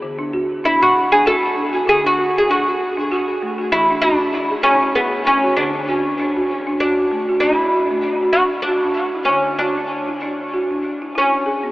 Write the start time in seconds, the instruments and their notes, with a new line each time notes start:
0.02 marimba D3
0.19 marimba D4
0.33 marimba F#4
0.64 marimba D4, oud E4
0.81 marimba F#4, oud F#4
1.12 marimba D4, oud G#4
1.26 marimba F#4, oud A4
1.56 marimba D4
1.73 marimba F#4
1.87 marimba D3, oud G#4
2.04 marimba D4, oud F#4
2.19 marimba F#4
2.38 oud G#4
2.50 marimba D4, oud F#4
2.67 marimba F#4
2.97 marimba D4
3.12 marimba F#4
3.42 marimba A3
3.58 marimba F#4
3.72 marimba E3, oud E4
3.90 marimba D4
4.02 oud D4, marimba F#4
4.34 marimba E4
4.51 marimba G#4
4.63 oud C#4
4.82 marimba E4
4.95 oud B3, marimba G#4
5.27 oud C#4, marimba E4
5.43 marimba F#4
5.56 marimba D3, oud D4
5.75 marimba D4
5.89 marimba F#4
6.20 marimba D4
6.37 marimba F#4
6.67 marimba D4
6.80 oud D4, marimba F#4
7.12 marimba A3
7.29 marimba F#4
7.40 marimba D4, oud E4
7.74 marimba F#4
7.91 marimba A3
8.23 marimba F#4
8.33 marimba D4, oud F#4
8.62 oud D4
8.67 marimba F#4
8.84 marimba D4
9.15 marimba E4
9.25 marimba D3, oud C#4
9.59 oud D4, marimba F#4
9.78 marimba D4
10.08 marimba E4
10.22 marimba D4
10.54 marimba F#4
10.71 marimba D4
11.02 marimba E4
11.15 oud C#4, marimba E4
11.46 marimba G#4
11.63 marimba B3